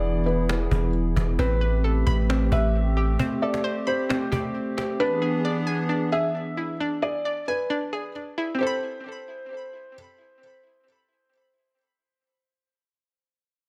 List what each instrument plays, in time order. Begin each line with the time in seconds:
Already playing: 808-style bass E1, analog synth pad E3 B3 E4 G#4, felt piano D5
0.04 cajon slap
0.26 felt piano B4
0.49 cajon slap
0.71 808-style bass E1, cajon bass
0.94 cajon slap
1.16 808-style bass E1, cajon bass, cajon slap
1.22 cajon slap
1.28 cajon slap
1.33 cajon slap
1.39 808-style bass A1, analog synth pad A3 C4 G4, synth pluck C4, felt piano B4, cajon bass
1.61 synth pluck B4
1.84 synth pluck A4, cajon slap
2.07 808-style bass A1, synth pluck B5, cajon bass
2.30 synth pluck C4, cajon slap
2.52 808-style bass A1, synth pluck B4, felt piano E5, cajon bass
2.74 cajon slap
2.97 synth pluck G4, cajon slap
3.19 synth pluck C4, cajon bass
3.42 synth pluck A4, felt piano D5
3.54 cajon slap
3.64 synth pluck C5
3.87 felt piano C5, synth pluck B5
4.09 synth pluck C4, cajon slap
4.32 synth pluck G4, cajon bass
4.55 cajon slap
4.78 synth pluck G4, cajon slap
5.00 analog synth pad E3 B3 D4 G#4, synth pluck D4, felt piano B4
5.22 synth pluck G#4
5.45 synth pluck D5
5.67 synth pluck G#5
5.89 synth pluck D4
6.12 synth pluck G#4, felt piano E5
6.57 synth pluck E4
6.80 synth pluck D4
7.02 synth pluck G#4, felt piano D5
7.25 synth pluck D5
7.48 felt piano B4, synth pluck G#5
7.70 synth pluck D4
7.93 synth pluck G#4
8.38 synth pluck E4
8.55 synth pluck C4
8.59 synth pluck G4, felt piano C5
8.63 synth pluck A4 B5